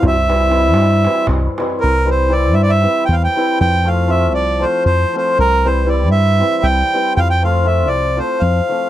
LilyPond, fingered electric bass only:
\new Staff \with { instrumentName = "Fingered electric bass" } { \clef bass \time 7/8 \key c \mixolydian \tempo 4 = 118 c,4. g,4 c,8 r8 | c,4. g,4 e,8 r8 | f,4. c,4 f,8 r8 | c,4. g,4 c,8 r8 |
f,4. c,4 f,8 r8 | }